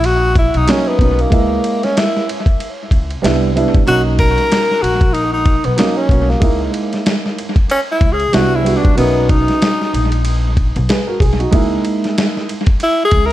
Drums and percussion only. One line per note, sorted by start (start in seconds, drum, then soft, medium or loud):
0.04 ride medium
0.35 kick medium
0.35 ride medium
0.54 ride soft
0.68 snare loud
0.68 hi-hat pedal medium
0.68 ride medium
0.99 kick loud
0.99 ride medium
1.19 ride soft
1.32 kick loud
1.32 ride medium
1.64 ride medium
1.83 snare soft
1.83 ride soft
1.97 snare loud
1.97 hi-hat pedal medium
1.97 ride medium
2.17 snare soft
2.29 ride medium
2.46 kick medium
2.46 ride soft
2.60 ride medium
2.91 kick medium
2.91 ride medium
3.10 ride soft
3.24 snare loud
3.24 hi-hat pedal medium
3.24 ride medium
3.57 ride medium
3.74 kick loud
3.74 ride soft
3.88 ride medium
4.19 kick medium
4.19 ride medium
4.38 snare soft
4.38 ride soft
4.52 snare loud
4.52 hi-hat pedal medium
4.52 ride medium
4.71 snare soft
4.84 ride medium
5.01 kick loud
5.01 ride soft
5.14 ride medium
5.46 kick medium
5.46 ride medium
5.64 ride soft
5.78 snare loud
5.78 hi-hat pedal medium
5.78 ride medium
6.09 kick loud
6.09 ride medium
6.30 snare soft
6.42 kick loud
6.42 ride medium
6.74 ride medium
6.93 snare soft
6.93 ride soft
7.06 snare loud
7.06 hi-hat pedal medium
7.06 ride medium
7.26 snare soft
7.38 ride medium
7.56 kick loud
7.56 ride soft
7.70 ride medium
8.01 kick medium
8.01 ride medium
8.20 ride soft
8.33 snare loud
8.33 hi-hat pedal medium
8.33 ride medium
8.66 ride medium
8.85 kick loud
8.85 ride soft
8.98 ride medium
9.29 kick medium
9.29 ride medium
9.48 snare soft
9.48 ride soft
9.62 snare loud
9.62 hi-hat pedal soft
9.62 ride medium
9.81 snare soft
9.94 ride medium
10.12 ride soft
10.25 ride medium
10.57 kick medium
10.57 ride medium
10.76 ride soft
10.89 snare loud
10.89 hi-hat pedal medium
10.89 ride medium
11.20 kick loud
11.20 ride medium
11.40 ride soft
11.53 kick loud
11.53 ride medium
11.85 ride medium
12.04 snare soft
12.04 ride soft
12.18 snare loud
12.18 hi-hat pedal medium
12.18 ride medium
12.37 snare soft
12.49 ride medium
12.66 kick medium
12.66 ride soft
12.80 ride medium
13.11 kick medium
13.11 ride medium